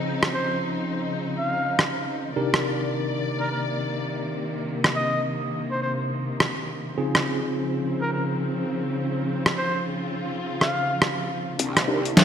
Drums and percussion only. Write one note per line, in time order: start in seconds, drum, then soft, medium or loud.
0.23 cross-stick soft
1.79 cross-stick soft
2.54 cross-stick soft
4.84 cross-stick soft
6.40 cross-stick soft
7.15 cross-stick medium
9.46 cross-stick medium
10.61 cross-stick soft
11.02 cross-stick medium
11.59 closed hi-hat medium
11.77 cross-stick soft
11.77 closed hi-hat soft
12.05 closed hi-hat soft
12.17 snare loud
12.17 closed hi-hat medium